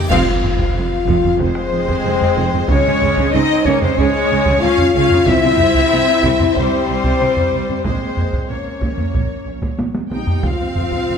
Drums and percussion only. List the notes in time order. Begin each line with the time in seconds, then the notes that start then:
0.11 concert bass drum, taiko, crash
0.43 taiko low
0.59 taiko
1.08 taiko
1.24 taiko low
1.39 taiko
1.55 taiko rim
1.88 taiko
2.21 taiko low
2.54 taiko low
2.69 taiko
3.02 taiko low
3.17 taiko
3.65 taiko
3.81 taiko low
3.98 taiko
4.46 taiko
4.78 taiko low
5.10 taiko low
5.26 taiko
5.58 taiko low
5.75 taiko
6.23 taiko
6.40 taiko low
6.56 taiko
7.04 taiko
7.37 taiko low
7.69 taiko low
7.84 taiko
8.17 taiko low
8.33 taiko
8.81 taiko
8.98 taiko low
9.14 taiko
9.63 taiko
9.79 taiko high
9.95 taiko high
10.12 taiko high
10.27 taiko low
10.44 taiko
10.76 taiko low
10.92 taiko